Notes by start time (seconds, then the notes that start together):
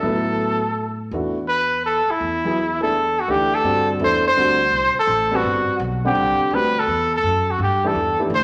Already playing: A4
0.03 A2 F#3 B3 E4 A4
1.11 E2 E3 A3 D4 F#4
1.48 B4
1.86 A4
2.08 E4, muted upright bass stroke
2.20 E2
2.45 F#3 B3 E4 G#4
2.81 E3 A3 D4 G#4 A4
3.20 F#4
3.28 D2 E3 A3 D4 G4
3.55 A4
3.64 G2 D3 G3 C4 F#4
4.00 E2 E3 A3 D4 A4
4.04 C5
4.28 C5
4.36 D2 D3 G3 C4 F#4
4.71 C2
4.95 A4, muted upright bass stroke
5.07 A1
5.31 G3 C4 F#4 B4
5.36 F#4
5.43 G1
5.67 muted upright bass stroke
5.79 B1
6.04 D3 G3 C4 G4 F#5
6.15 C2
6.39 muted upright bass stroke
6.50 D2 G3 C4 F#4 B4
6.55 B4
6.79 A4
6.87 E2
7.16 A4
7.23 F#2
7.51 F#4
7.59 G2
7.63 G4
7.84 E3 A3 D4 G4 A4
7.95 E2
8.19 E3 A3 D4 G4
8.30 D2
8.34 C5